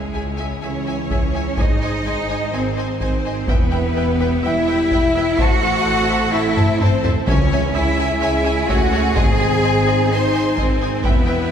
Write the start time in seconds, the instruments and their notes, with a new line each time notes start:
Already playing: french horn section C#3, cello section G#3, string section G#3 E4 G#4 C#5, violin section G#4
0.13 double bass section C#2, viola section G#4 E5, violin section G#5
0.37 viola section G#4 E5, violin section G#5
0.62 double bass section C#2, french horn section E3, cello section C#4, viola section G#4 E5, violin section C#5 G#5
0.86 viola section G#4 E5, violin section G#5
1.10 double bass section C#2, viola section G#4 E5, violin section G#5, taiko
1.34 viola section G#4 E5, violin section G#5
1.55 double bass section G#1, french horn section G#3, cello section D#4, string section D#4 C5, viola section C5 D#5, violin section D#5 G#5, taiko
1.82 viola section C5 D#5, violin section G#5
2.06 double bass section G#1, viola section C5 D#5, violin section G#5
2.30 viola section C5 D#5, violin section G#5
2.52 double bass section G#1, french horn section D#3, cello section C4, viola section C5 D#5, violin section C5 G#5
2.77 viola section C5 D#5, violin section G#5
3.00 double bass section G#1, french horn section D#3, cello section C4, violin section C5 G#5, viola section C5 D#5, taiko
3.25 viola section C5 D#5, violin section G#5
3.48 double bass section E1, french horn section E3, cello section B3, string section B3 E4 G4 E5, violin section B4 G5, viola section B4 E5, taiko
3.71 viola section B4 E5, violin section G5
3.96 double bass section E1, viola section B4 E5, violin section G5
4.19 viola section B4 E5, violin section G5
4.44 double bass section E1, french horn section G3, cello section E4, viola section B4 E5, violin section E5 G5
4.67 viola section B4 E5, violin section G5
4.91 double bass section E1, viola section B4 E5, violin section G5, taiko
5.16 viola section B4 E5, violin section G5
5.37 double bass section A1, french horn section A3, string section C4 A4, cello section F#4, viola section C5 E5, violin section F#5 A5, taiko
5.61 viola section C5 E5, violin section A5
5.85 double bass section A1, viola section C5 E5, violin section A5
6.08 viola section C5 E5, violin section A5
6.31 double bass section A1, french horn section A3, cello section E4, viola section C5 E5, violin section E5 A5
6.56 viola section C5 E5, violin section A5, taiko low-mid
6.80 double bass section A1, french horn section E3, cello section C4, viola section C5 E5, violin section C5 A5, taiko low-mid
7.03 viola section C5 E5, violin section A5, taiko low
7.26 double bass section C#2, timpani C#3, french horn section E3, string section C#4 G#4 G#5, cello section C#4, viola section C#5 E5, violin section C#5 G#5, taiko
7.51 viola section C#5 E5, violin section G#5
7.74 double bass section C#2, french horn section G#3, cello section E4, viola section C#5 E5, violin section E5 G#5
7.98 viola section C#5 E5, violin section G#5
8.21 double bass section C#2, french horn section G#3, cello section E4, viola section C#5 E5, violin section E5 G#5
8.45 viola section C#5 E5, violin section G#5
8.68 double bass section C#2, french horn section A3, cello section F#4, viola section C#5 E5, violin section F#5 G#5, taiko
8.92 viola section C#5 E5, violin section G#5
9.15 double bass section G#1, timpani G#2, french horn section C4, string section C4 D#4, cello section G#4, viola section C5 D#5, violin section G#5, taiko
9.39 viola section C5 D#5, violin section G#5
9.63 double bass section G#1, viola section C5 D#5, violin section G#5
9.87 viola section C5 D#5, violin section G#5
10.10 double bass section G#1, french horn section D#4, viola section C5 D#5, cello section C5, violin section G#5 C6
10.34 viola section C5 D#5, violin section G#5
10.57 double bass section G#1, french horn section D#3, cello section C4, viola section C5 D#5, violin section C5 G#5, taiko
10.81 viola section C5 D#5, violin section G#5
11.03 double bass section E1, french horn section E3, string section B3 E4 G4 E5, cello section B3, viola section B4 E5, violin section B4 G5, taiko
11.27 viola section B4 E5, violin section G5